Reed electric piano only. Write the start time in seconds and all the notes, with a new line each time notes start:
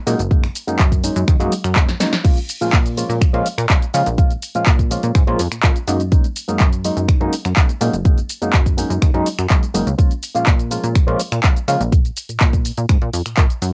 0.07 F#3 G#3 A#3 C#4 D#4
0.31 F#3 G#3 A#3 C#4 D#4
0.67 F#3 G#3 A#3 C#4 D#4
1.03 F#3 G#3 A#3 C#4 D#4
1.40 F#3 G#3 A#3 C#4 D#4
1.76 F#3 G#3 A#3 C#4 D#4
2.00 F#3 G#3 A#3 C#4 D#4
2.24 F3 G#3 A#3 C#4 F4
2.61 F3 G#3 A#3 C#4 F4
2.97 F3 G#3 A#3 C#4 F4
3.33 F3 G#3 A#3 C#4 F4
3.69 F3 G#3 A#3 C#4 F4
3.94 F3 G#3 A#3 C#4 F4
4.17 F3 G#3 A#3 C#4 F4
4.55 F3 G#3 A#3 C#4 F4
4.90 F3 G#3 A#3 C#4 F4
5.27 F3 G#3 A#3 C#4 F4
5.63 F3 G#3 A#3 C#4 F4
5.87 F#3 G#3 A#3 C#4 D#4
6.11 F#3 G#3 A#3 C#4 D#4
6.48 F#3 G#3 A#3 C#4 D#4
6.84 F#3 G#3 A#3 C#4 D#4
7.21 F#3 G#3 A#3 C#4 D#4
7.57 F#3 G#3 A#3 C#4 D#4
7.81 F#3 G#3 A#3 C#4 D#4
8.05 F#3 G#3 A#3 C#4 D#4
8.42 F#3 G#3 A#3 C#4 D#4
8.78 F#3 G#3 A#3 C#4 D#4
9.14 F#3 G#3 A#3 C#4 D#4
9.50 F#3 G#3 A#3 C#4 D#4
9.74 F#3 G#3 A#3 C#4 D#4
9.98 F3 G#3 A#3 C#4 F4
10.35 F3 G#3 A#3 C#4 F4
10.71 F3 G#3 A#3 C#4 F4
11.07 F3 G#3 A#3 C#4 F4
11.43 F3 G#3 A#3 C#4 F4
11.68 F3 G#3 A#3 C#4 F4